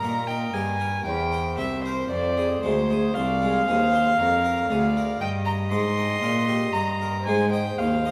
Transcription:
Already playing: violin A#4 A#5
0.01 cello A#2, harpsichord A#2 A#4
0.27 harpsichord D#4, violin G5
0.53 cello G2, harpsichord G2 G4, violin G#5
0.80 harpsichord A#4
1.05 cello E2, harpsichord E2, violin C5 G5
1.32 harpsichord A#4
1.58 cello C2, harpsichord C2 G4, violin E5
1.85 harpsichord A#4, violin C5
2.09 cello F2, harpsichord F2, violin D5
2.37 harpsichord G#4
2.62 cello D2, harpsichord D2 G#3, violin C5
2.90 harpsichord G#4
3.14 cello C2, harpsichord C2 C5, violin D5 F5
3.42 harpsichord G#3
3.66 cello D#2, harpsichord D#2 G#4, violin C5
3.94 harpsichord C5
4.18 cello F2, harpsichord F2, violin A#4
4.44 harpsichord A#4
4.69 cello D2, harpsichord D2 G#4, violin D5
4.97 harpsichord A#4
5.20 cello G2, harpsichord G2, violin D#5 G5
5.45 harpsichord G5, violin A#5
5.71 cello G#2, harpsichord G#2 D#5, violin C6
5.98 harpsichord G5
6.22 cello A#2, harpsichord A#2 A#4
6.48 harpsichord G4
6.73 cello G2, harpsichord G2 D#5, violin A#5
7.01 harpsichord A#4
7.24 cello G#2, harpsichord G#2 G#3, violin C5 G#5
7.53 harpsichord D#5, violin G5
7.78 cello D#2, harpsichord D#2 D#4, violin F5
8.05 harpsichord D#5

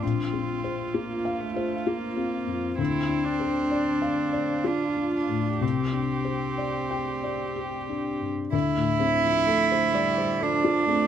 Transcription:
0.01 felt piano A#1, cello C4, viola F4
0.33 felt piano C4
0.64 felt piano C5
0.94 cello A#3, felt piano F4
1.25 felt piano F5
1.40 cello A3
1.56 felt piano C5
1.87 cello A#3, felt piano F4
2.17 felt piano C4
2.47 felt piano F2
2.78 felt piano D2, cello C4, viola E4
3.09 felt piano D4
3.25 viola D4
3.40 felt piano C5
3.71 felt piano D5
4.02 felt piano F5
4.33 felt piano D5
4.64 cello D4, felt piano F4, viola F4
4.96 felt piano D4
5.15 cello D4
5.29 felt piano A2
5.61 felt piano C2, cello C4, viola G4
5.93 felt piano D4
6.25 felt piano C5
6.58 felt piano D5
6.91 felt piano G5
7.23 felt piano D5
7.56 felt piano G4
7.89 felt piano D4
8.21 felt piano G2
8.52 felt piano D2, cello E4
8.76 felt piano A2
9.00 felt piano C4
9.24 felt piano F3
9.47 viola A3, felt piano A4
9.72 felt piano C5
9.94 viola G3, felt piano D5
10.18 felt piano C5
10.40 viola F3, cello D4, felt piano A4
10.64 felt piano F4
10.88 viola A3, felt piano C4

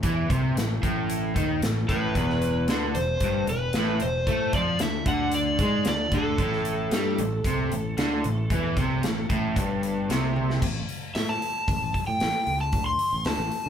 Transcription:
0.03 fingered electric bass E2, overdriven electric guitar E3, kick, closed hi-hat
0.30 fingered electric bass C2, overdriven electric guitar C3, kick, closed hi-hat
0.55 fingered electric bass A1, overdriven electric guitar A2, snare, closed hi-hat
0.83 fingered electric bass A1, overdriven electric guitar A2, kick, closed hi-hat
1.10 closed hi-hat
1.36 fingered electric bass D#2, overdriven electric guitar D#3, kick, closed hi-hat
1.62 fingered electric bass A1, overdriven electric guitar A2, snare, closed hi-hat
1.89 fingered electric bass A1, overdriven electric guitar A2, electric slide guitar B4, kick, closed hi-hat
2.15 fingered electric bass E1, overdriven electric guitar E2, kick, closed hi-hat
2.30 snare
2.42 closed hi-hat
2.67 fingered electric bass D2, overdriven electric guitar D3, snare, closed hi-hat
2.95 fingered electric bass E1, overdriven electric guitar E2, electric slide guitar C5, closed hi-hat
3.20 fingered electric bass G1, overdriven electric guitar G2, kick, closed hi-hat
3.47 fingered electric bass E1, overdriven electric guitar E2, electric slide guitar B4, closed hi-hat
3.73 fingered electric bass A1, overdriven electric guitar A2, snare, closed hi-hat
4.00 fingered electric bass E1, overdriven electric guitar E2, electric slide guitar C5, closed hi-hat
4.27 fingered electric bass A2, overdriven electric guitar A3, kick, closed hi-hat
4.53 fingered electric bass F2, overdriven electric guitar F3, electric slide guitar D5, kick, closed hi-hat
4.79 fingered electric bass D2, overdriven electric guitar D3, electric slide guitar E5, snare, closed hi-hat
5.06 fingered electric bass D2, overdriven electric guitar D3, electric slide guitar F#5, kick, closed hi-hat
5.32 electric slide guitar D5, closed hi-hat
5.59 fingered electric bass G#2, overdriven electric guitar G#3, kick, closed hi-hat
5.85 fingered electric bass D2, overdriven electric guitar D3, electric slide guitar D5, snare, closed hi-hat
6.11 fingered electric bass D2, overdriven electric guitar D3, electric slide guitar A4, kick, closed hi-hat
6.38 fingered electric bass A1, overdriven electric guitar A2, kick, closed hi-hat
6.53 snare
6.65 closed hi-hat
6.91 fingered electric bass G2, overdriven electric guitar G3, snare, closed hi-hat
7.18 fingered electric bass A1, overdriven electric guitar A2, closed hi-hat
7.44 fingered electric bass C2, overdriven electric guitar C3, kick, closed hi-hat
7.72 fingered electric bass A1, overdriven electric guitar A2, closed hi-hat
7.98 fingered electric bass D2, overdriven electric guitar D3, snare, closed hi-hat
8.24 fingered electric bass A1, overdriven electric guitar A2, closed hi-hat
8.50 fingered electric bass E2, overdriven electric guitar E3, kick, closed hi-hat
8.76 fingered electric bass C2, overdriven electric guitar C3, kick, closed hi-hat
9.03 fingered electric bass A1, overdriven electric guitar A2, snare, closed hi-hat
9.30 fingered electric bass A1, overdriven electric guitar A2, kick, closed hi-hat
9.56 fingered electric bass G1, overdriven electric guitar G2, kick, closed hi-hat
9.83 closed hi-hat
10.09 fingered electric bass C2, overdriven electric guitar C3, snare, closed hi-hat
10.36 high tom
10.50 snare
10.62 fingered electric bass A1, kick, crash
10.89 open hi-hat
11.15 fingered electric bass A2, electric slide guitar E5, snare, open hi-hat
11.29 electric slide guitar A5
11.42 open hi-hat
11.68 fingered electric bass A1, kick, open hi-hat
11.82 fingered electric bass A1
11.94 kick, open hi-hat
12.07 fingered electric bass A2, electric slide guitar G5
12.20 fingered electric bass A1, snare, open hi-hat
12.47 fingered electric bass C#2, open hi-hat
12.61 electric slide guitar A5
12.72 fingered electric bass D2, kick, open hi-hat
12.86 electric slide guitar C6
12.99 open hi-hat
13.13 fingered electric bass A1
13.25 fingered electric bass D2, electric slide guitar A5, snare, open hi-hat
13.38 fingered electric bass A1
13.52 open hi-hat

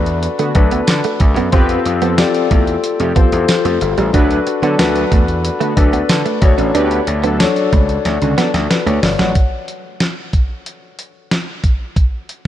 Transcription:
Already playing: slap bass E2, grand piano D4 F#4 A4 B4
0.06 closed hi-hat
0.23 closed hi-hat
0.39 analog polysynth D3 B3 F#4, clean electric guitar A3, closed hi-hat
0.55 slap bass D2, analog polysynth F#3 D4 A4, grand piano D4 F#4 A4 B4, muted clean electric guitar stroke, kick, closed hi-hat
0.71 clean electric guitar B3, closed hi-hat
0.87 slap bass D3, snare, closed hi-hat, tambourine
1.04 clean electric guitar A3, closed hi-hat
1.20 slap bass D2, muted clean electric guitar stroke, kick, closed hi-hat
1.36 slap bass F#2, clean electric guitar B3, closed hi-hat
1.52 slap bass F2, analog polysynth B3 G4 B4, clean electric guitar C4, grand piano C4 F4 G4 A4, kick, closed hi-hat
1.69 closed hi-hat
1.85 slap bass F2, muted clean electric guitar stroke, closed hi-hat
2.02 analog polysynth F3 C4 A4, clean electric guitar B3, closed hi-hat
2.17 grand piano F4 G4 A4 D5, snare, closed hi-hat, tambourine
2.34 closed hi-hat
2.51 slap bass E2, clean electric guitar A3, kick, closed hi-hat
2.67 closed hi-hat
2.84 closed hi-hat
3.00 slap bass F2, analog polysynth C3 A3 G4, closed hi-hat
3.15 analog polysynth F3 C4 A4, clean electric guitar B3, grand piano F4 G4 A4 C5, kick, closed hi-hat
3.32 slap bass E2, closed hi-hat
3.48 snare, closed hi-hat, tambourine
3.65 slap bass F2, clean electric guitar A3, closed hi-hat
3.81 slap bass G1, muted clean electric guitar stroke, closed hi-hat
3.97 slap bass A1, clean electric guitar G3, closed hi-hat
4.13 slap bass D2, analog polysynth F#3 D4 B4, grand piano D4 F#4 A4 B4, clean electric guitar D4, kick, closed hi-hat
4.31 closed hi-hat
4.47 muted clean electric guitar stroke, closed hi-hat
4.62 slap bass D3, analog polysynth F#3 D4 A4, clean electric guitar B3, closed hi-hat
4.78 slap bass D2, grand piano D4 F#4 A4 B4, snare, closed hi-hat, tambourine
4.96 closed hi-hat
5.12 slap bass E2, clean electric guitar A3, kick, closed hi-hat
5.28 closed hi-hat
5.45 closed hi-hat
5.60 analog polysynth D3 B3 F#4, clean electric guitar A3, closed hi-hat
5.76 slap bass D2, analog polysynth F#3 D4 A4, grand piano D4 F#4 A4 B4, muted clean electric guitar stroke, kick, closed hi-hat
5.93 clean electric guitar B3, closed hi-hat
6.09 slap bass D3, snare, closed hi-hat, tambourine
6.26 clean electric guitar A3, closed hi-hat
6.41 slap bass D2, grand piano D4 F#4 A4 C#5, muted clean electric guitar stroke, kick, closed hi-hat
6.58 slap bass A1, clean electric guitar C#4, closed hi-hat
6.75 slap bass D2, analog polysynth B3 G4 B4, clean electric guitar D4, closed hi-hat
6.91 closed hi-hat
7.07 slap bass D2, muted clean electric guitar stroke, closed hi-hat
7.23 analog polysynth F#3 D4 A4, clean electric guitar B3, closed hi-hat
7.39 grand piano D4 F#4 A4 C#5, snare, closed hi-hat, tambourine
7.56 closed hi-hat
7.73 slap bass C#2, clean electric guitar A3, kick, closed hi-hat
7.89 closed hi-hat
8.05 slap bass D2, snare, closed hi-hat
8.21 slap bass C#2, analog polysynth D3 C#4 F#4, closed hi-hat
8.38 analog polysynth F#3 D4 A4, clean electric guitar B3, snare, closed hi-hat
8.54 slap bass D2, snare, closed hi-hat
8.70 grand piano F#4 B4, snare, closed hi-hat
8.86 slap bass D2, clean electric guitar A3, grand piano F#4 C#5, closed hi-hat
9.02 slap bass G1, grand piano A4 D5, muted clean electric guitar stroke, snare, open hi-hat
9.18 slap bass A1, clean electric guitar F#3, grand piano C#5 F#5, snare, closed hi-hat
9.35 kick, closed hi-hat
9.68 closed hi-hat
10.00 snare, closed hi-hat
10.33 kick, closed hi-hat
10.66 closed hi-hat
10.99 closed hi-hat
11.31 snare, closed hi-hat
11.64 kick, closed hi-hat
11.96 kick, closed hi-hat
12.29 closed hi-hat

